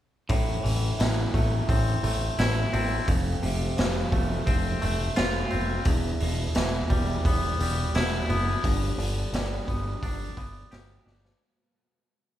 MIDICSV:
0, 0, Header, 1, 4, 480
1, 0, Start_track
1, 0, Key_signature, 0, "minor"
1, 0, Tempo, 693642
1, 209, Time_signature, 4, 2, 24, 8
1, 8574, End_track
2, 0, Start_track
2, 0, Title_t, "Clean electric guitar"
2, 0, Program_c, 0, 27
2, 202, Note_on_c, 0, 45, 72
2, 438, Note_on_c, 0, 52, 57
2, 676, Note_off_c, 0, 52, 0
2, 685, Note_on_c, 0, 52, 65
2, 927, Note_on_c, 0, 57, 63
2, 1168, Note_on_c, 0, 60, 67
2, 1400, Note_off_c, 0, 57, 0
2, 1407, Note_off_c, 0, 45, 0
2, 1408, Note_on_c, 0, 57, 65
2, 1652, Note_on_c, 0, 64, 78
2, 1882, Note_off_c, 0, 60, 0
2, 1889, Note_off_c, 0, 52, 0
2, 1891, Note_on_c, 0, 60, 70
2, 2131, Note_off_c, 0, 57, 0
2, 2131, Note_on_c, 0, 41, 73
2, 2132, Note_off_c, 0, 60, 0
2, 2132, Note_off_c, 0, 64, 0
2, 2371, Note_on_c, 0, 48, 68
2, 2611, Note_on_c, 0, 53, 64
2, 2853, Note_on_c, 0, 57, 58
2, 3090, Note_on_c, 0, 60, 67
2, 3325, Note_off_c, 0, 57, 0
2, 3333, Note_on_c, 0, 57, 73
2, 3334, Note_off_c, 0, 41, 0
2, 3573, Note_on_c, 0, 65, 77
2, 3575, Note_off_c, 0, 48, 0
2, 3801, Note_off_c, 0, 60, 0
2, 3810, Note_on_c, 0, 60, 64
2, 3815, Note_off_c, 0, 53, 0
2, 4053, Note_off_c, 0, 60, 0
2, 4055, Note_off_c, 0, 57, 0
2, 4055, Note_off_c, 0, 65, 0
2, 4057, Note_on_c, 0, 40, 75
2, 4298, Note_on_c, 0, 47, 64
2, 4540, Note_on_c, 0, 52, 69
2, 4772, Note_on_c, 0, 55, 65
2, 5020, Note_on_c, 0, 59, 65
2, 5258, Note_off_c, 0, 40, 0
2, 5262, Note_off_c, 0, 55, 0
2, 5265, Note_on_c, 0, 55, 62
2, 5499, Note_off_c, 0, 47, 0
2, 5503, Note_on_c, 0, 64, 69
2, 5737, Note_off_c, 0, 59, 0
2, 5739, Note_on_c, 0, 59, 70
2, 5740, Note_off_c, 0, 52, 0
2, 5981, Note_off_c, 0, 64, 0
2, 5983, Note_on_c, 0, 43, 75
2, 6222, Note_on_c, 0, 50, 62
2, 6465, Note_off_c, 0, 55, 0
2, 6465, Note_on_c, 0, 55, 67
2, 6698, Note_off_c, 0, 59, 0
2, 6698, Note_on_c, 0, 59, 62
2, 6940, Note_on_c, 0, 62, 67
2, 7169, Note_off_c, 0, 59, 0
2, 7177, Note_on_c, 0, 59, 62
2, 7179, Note_off_c, 0, 43, 0
2, 7414, Note_on_c, 0, 67, 72
2, 7418, Note_off_c, 0, 50, 0
2, 7644, Note_off_c, 0, 62, 0
2, 7653, Note_on_c, 0, 62, 63
2, 7659, Note_off_c, 0, 55, 0
2, 7894, Note_off_c, 0, 62, 0
2, 7894, Note_off_c, 0, 67, 0
2, 7895, Note_off_c, 0, 59, 0
2, 8574, End_track
3, 0, Start_track
3, 0, Title_t, "Picked electric bass"
3, 0, Program_c, 1, 34
3, 206, Note_on_c, 1, 33, 81
3, 384, Note_off_c, 1, 33, 0
3, 449, Note_on_c, 1, 33, 84
3, 626, Note_off_c, 1, 33, 0
3, 690, Note_on_c, 1, 33, 80
3, 867, Note_off_c, 1, 33, 0
3, 928, Note_on_c, 1, 33, 89
3, 1106, Note_off_c, 1, 33, 0
3, 1168, Note_on_c, 1, 33, 76
3, 1346, Note_off_c, 1, 33, 0
3, 1405, Note_on_c, 1, 33, 96
3, 1584, Note_off_c, 1, 33, 0
3, 1651, Note_on_c, 1, 33, 91
3, 1828, Note_off_c, 1, 33, 0
3, 1893, Note_on_c, 1, 33, 86
3, 2069, Note_off_c, 1, 33, 0
3, 2132, Note_on_c, 1, 29, 88
3, 2309, Note_off_c, 1, 29, 0
3, 2375, Note_on_c, 1, 29, 85
3, 2551, Note_off_c, 1, 29, 0
3, 2616, Note_on_c, 1, 29, 83
3, 2792, Note_off_c, 1, 29, 0
3, 2851, Note_on_c, 1, 29, 81
3, 3029, Note_off_c, 1, 29, 0
3, 3097, Note_on_c, 1, 29, 86
3, 3273, Note_off_c, 1, 29, 0
3, 3343, Note_on_c, 1, 29, 90
3, 3517, Note_off_c, 1, 29, 0
3, 3583, Note_on_c, 1, 29, 88
3, 3757, Note_off_c, 1, 29, 0
3, 3826, Note_on_c, 1, 29, 83
3, 3999, Note_off_c, 1, 29, 0
3, 4052, Note_on_c, 1, 28, 88
3, 4231, Note_off_c, 1, 28, 0
3, 4294, Note_on_c, 1, 28, 84
3, 4472, Note_off_c, 1, 28, 0
3, 4537, Note_on_c, 1, 28, 80
3, 4714, Note_off_c, 1, 28, 0
3, 4777, Note_on_c, 1, 28, 91
3, 4954, Note_off_c, 1, 28, 0
3, 5017, Note_on_c, 1, 28, 86
3, 5194, Note_off_c, 1, 28, 0
3, 5254, Note_on_c, 1, 28, 92
3, 5432, Note_off_c, 1, 28, 0
3, 5495, Note_on_c, 1, 28, 80
3, 5673, Note_off_c, 1, 28, 0
3, 5736, Note_on_c, 1, 30, 79
3, 5913, Note_off_c, 1, 30, 0
3, 5980, Note_on_c, 1, 31, 95
3, 6156, Note_off_c, 1, 31, 0
3, 6214, Note_on_c, 1, 31, 88
3, 6392, Note_off_c, 1, 31, 0
3, 6454, Note_on_c, 1, 31, 86
3, 6632, Note_off_c, 1, 31, 0
3, 6700, Note_on_c, 1, 31, 87
3, 6875, Note_off_c, 1, 31, 0
3, 6937, Note_on_c, 1, 31, 82
3, 7113, Note_off_c, 1, 31, 0
3, 7178, Note_on_c, 1, 31, 88
3, 7353, Note_off_c, 1, 31, 0
3, 7417, Note_on_c, 1, 31, 89
3, 7593, Note_off_c, 1, 31, 0
3, 7650, Note_on_c, 1, 31, 78
3, 7828, Note_off_c, 1, 31, 0
3, 8574, End_track
4, 0, Start_track
4, 0, Title_t, "Drums"
4, 202, Note_on_c, 9, 46, 62
4, 205, Note_on_c, 9, 36, 101
4, 272, Note_off_c, 9, 46, 0
4, 275, Note_off_c, 9, 36, 0
4, 454, Note_on_c, 9, 46, 44
4, 523, Note_off_c, 9, 46, 0
4, 691, Note_on_c, 9, 46, 68
4, 698, Note_on_c, 9, 38, 102
4, 760, Note_off_c, 9, 46, 0
4, 767, Note_off_c, 9, 38, 0
4, 928, Note_on_c, 9, 36, 79
4, 933, Note_on_c, 9, 46, 48
4, 997, Note_off_c, 9, 36, 0
4, 1002, Note_off_c, 9, 46, 0
4, 1168, Note_on_c, 9, 36, 104
4, 1170, Note_on_c, 9, 46, 69
4, 1237, Note_off_c, 9, 36, 0
4, 1239, Note_off_c, 9, 46, 0
4, 1410, Note_on_c, 9, 46, 49
4, 1479, Note_off_c, 9, 46, 0
4, 1652, Note_on_c, 9, 46, 69
4, 1658, Note_on_c, 9, 38, 101
4, 1721, Note_off_c, 9, 46, 0
4, 1728, Note_off_c, 9, 38, 0
4, 1893, Note_on_c, 9, 46, 50
4, 1962, Note_off_c, 9, 46, 0
4, 2131, Note_on_c, 9, 36, 111
4, 2132, Note_on_c, 9, 46, 69
4, 2200, Note_off_c, 9, 36, 0
4, 2201, Note_off_c, 9, 46, 0
4, 2374, Note_on_c, 9, 46, 49
4, 2443, Note_off_c, 9, 46, 0
4, 2615, Note_on_c, 9, 46, 62
4, 2622, Note_on_c, 9, 38, 104
4, 2685, Note_off_c, 9, 46, 0
4, 2691, Note_off_c, 9, 38, 0
4, 2853, Note_on_c, 9, 36, 78
4, 2854, Note_on_c, 9, 46, 46
4, 2923, Note_off_c, 9, 36, 0
4, 2924, Note_off_c, 9, 46, 0
4, 3093, Note_on_c, 9, 46, 60
4, 3094, Note_on_c, 9, 36, 103
4, 3162, Note_off_c, 9, 46, 0
4, 3163, Note_off_c, 9, 36, 0
4, 3336, Note_on_c, 9, 46, 47
4, 3405, Note_off_c, 9, 46, 0
4, 3571, Note_on_c, 9, 46, 58
4, 3578, Note_on_c, 9, 38, 112
4, 3641, Note_off_c, 9, 46, 0
4, 3648, Note_off_c, 9, 38, 0
4, 3810, Note_on_c, 9, 46, 46
4, 3879, Note_off_c, 9, 46, 0
4, 4050, Note_on_c, 9, 46, 67
4, 4053, Note_on_c, 9, 36, 112
4, 4119, Note_off_c, 9, 46, 0
4, 4122, Note_off_c, 9, 36, 0
4, 4293, Note_on_c, 9, 46, 47
4, 4362, Note_off_c, 9, 46, 0
4, 4531, Note_on_c, 9, 46, 65
4, 4538, Note_on_c, 9, 38, 104
4, 4600, Note_off_c, 9, 46, 0
4, 4607, Note_off_c, 9, 38, 0
4, 4775, Note_on_c, 9, 46, 50
4, 4776, Note_on_c, 9, 36, 77
4, 4844, Note_off_c, 9, 46, 0
4, 4845, Note_off_c, 9, 36, 0
4, 5017, Note_on_c, 9, 36, 99
4, 5020, Note_on_c, 9, 46, 67
4, 5086, Note_off_c, 9, 36, 0
4, 5089, Note_off_c, 9, 46, 0
4, 5262, Note_on_c, 9, 46, 51
4, 5331, Note_off_c, 9, 46, 0
4, 5500, Note_on_c, 9, 46, 67
4, 5507, Note_on_c, 9, 38, 104
4, 5569, Note_off_c, 9, 46, 0
4, 5576, Note_off_c, 9, 38, 0
4, 5742, Note_on_c, 9, 46, 46
4, 5811, Note_off_c, 9, 46, 0
4, 5979, Note_on_c, 9, 36, 96
4, 5981, Note_on_c, 9, 46, 72
4, 6048, Note_off_c, 9, 36, 0
4, 6050, Note_off_c, 9, 46, 0
4, 6226, Note_on_c, 9, 46, 46
4, 6296, Note_off_c, 9, 46, 0
4, 6461, Note_on_c, 9, 46, 68
4, 6468, Note_on_c, 9, 38, 106
4, 6530, Note_off_c, 9, 46, 0
4, 6537, Note_off_c, 9, 38, 0
4, 6698, Note_on_c, 9, 36, 80
4, 6700, Note_on_c, 9, 46, 44
4, 6768, Note_off_c, 9, 36, 0
4, 6769, Note_off_c, 9, 46, 0
4, 6939, Note_on_c, 9, 36, 105
4, 6942, Note_on_c, 9, 46, 61
4, 7008, Note_off_c, 9, 36, 0
4, 7011, Note_off_c, 9, 46, 0
4, 7177, Note_on_c, 9, 36, 80
4, 7178, Note_on_c, 9, 46, 50
4, 7246, Note_off_c, 9, 36, 0
4, 7247, Note_off_c, 9, 46, 0
4, 7417, Note_on_c, 9, 46, 60
4, 7424, Note_on_c, 9, 38, 103
4, 7486, Note_off_c, 9, 46, 0
4, 7493, Note_off_c, 9, 38, 0
4, 7661, Note_on_c, 9, 38, 50
4, 7730, Note_off_c, 9, 38, 0
4, 7786, Note_on_c, 9, 38, 81
4, 7855, Note_off_c, 9, 38, 0
4, 8574, End_track
0, 0, End_of_file